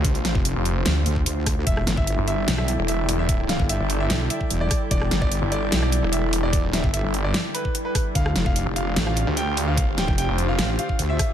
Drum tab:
HH |xxx-x-x-x-x-x-o-|x-x-x-x-x-x-x-o-|x-x-x-x-x-x-x-o-|x-x-x-x-x-x-x-o-|
SD |--o-----o-----r-|-ro-----or------|--o-----o-----r-|-ro-----or------|
BD |o--o-------o--o-|o--o------------|o--o-------o--o-|o--o------------|

HH |x-x-x-x-x-x-x-o-|x-x-x-x-x-x-x-o-|x-x-x-x-x-x-x-o-|
SD |--o-----o-----r-|-ro-----or------|--o-----o-----r-|
BD |o--o-------o--o-|o--o------------|o--o-------o--o-|